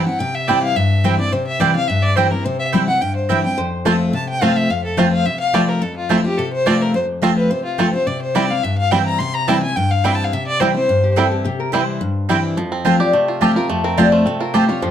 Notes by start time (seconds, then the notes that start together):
Already playing: G2
0.05 C4 E4 F#5
0.19 C3 G5
0.34 E5
0.48 E3 G3 C4 E4 C5 D5 G5
0.63 F5
0.76 G2 E5
1.04 E3 G3 C4 E4 C5 G5
1.19 C4 E4 D5
1.32 C3 C5
1.47 E5
1.60 E3 G3 C4 E4 C5 D5 G5
1.75 C4 E4 F5
1.87 G2 E5
2.02 D5
2.16 E3 G3 C4 E4 C5 G5
2.31 C4 E4 A#4
2.44 C3 C5
2.59 E5
2.73 E3 G3 C4 E4 C5 G5
2.87 C4 E4 F#5
3.01 G2 G5
3.16 C5
3.29 E3 G3 C4 E4 C5 E5 G5
3.44 C4 E4 G5
3.58 F2 C5
3.85 F3 A3 C4 F4 A4 C5 A5
4.13 C3 A5
4.29 G5
4.41 F3 A3 C4 F4 C5 F5 A5
4.56 E5
4.70 F2 F5
4.85 A4
4.97 F3 A3 C4 F4 C5 A5
5.13 F5
5.25 C3 E5
5.40 F5
5.53 F3 A3 C4 F4 C5 D5 A5
5.69 A#4
5.82 F2 A4
5.97 F4
6.09 F3 A3 C4 E4 F4 C5 A5
6.24 C4 F4 G4
6.38 C3 A4
6.53 C5
6.66 F3 A3 C4 F4 C5 D5 A5
6.81 A#4
6.94 F2 C5
7.22 F3 A3 C4 F4 C5 A5
7.36 B4
7.50 C3 C5
7.65 F4
7.78 F3 A3 C4 F4 A4 C5 A5
7.93 C4 F4 C5
8.07 C3 D5
8.22 C5
8.35 E3 G3 C4 E4 C5 D5 G5
8.50 C4 E4 F5
8.63 G2 E5
8.78 F5
8.91 E3 G3 C4 E4 C5 G5
9.05 A#5
9.19 C3 C6
9.33 A#5
9.47 E3 G3 C4 E4 C5 G5 A5
9.62 C4 E4 G#5
9.76 G2 G5
9.91 F5
10.04 E3 G3 C4 E4 C5 G5
10.15 A5
10.24 F5
10.33 C3 E5
10.47 D5
10.60 E3 G3 C4 E4 C5 G5
10.74 C4 E4 C5
10.89 G2
11.03 G4
11.16 E3 G3 C4 E4 A4 C5 G5
11.31 G4
11.44 C3 G4
11.60 A#4
11.72 E3 G3 C4 E4 C5 G5
12.01 G2
12.29 E3 G3 C4 E4 C5 G5
12.57 F2 F3
12.72 C4
12.85 F3 A3 C4 F4 C5 A5
13.00 C4 F4 G4 D5
13.13 C3 A3 C5
13.28 F4
13.41 F3 A3 C4 F4 G4 C5 A5
13.56 C4 F4 A#4
13.69 F2 A3 A4
13.84 C4 A#4
13.97 F3 A3 C4 F4 C5 D5 A5
14.12 A3 C5
14.26 C3 C4 A4
14.40 F4 A#4
14.54 F3 A3 C4 F4 G4 C5 A5
14.69 C4 F4 C#5
14.82 F2 F3 C5